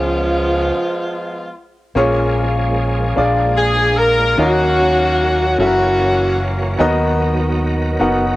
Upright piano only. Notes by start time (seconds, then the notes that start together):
Already playing: C#3 G#3 C#4 F4 B4
1.95 A#2 A#3 C#4 F4 G#4 C#5
3.16 A#2 A#3 D4 F4 G#4 D5
4.38 D#3 C#4 D#4 F#4 A#4 D#5
5.58 C#4 E4 F#4 A4 E5
5.66 A#4
6.79 D#3 B3 D#4 F#4 A#4 D#5
7.99 B3 D#4 F#4 A#4 F#5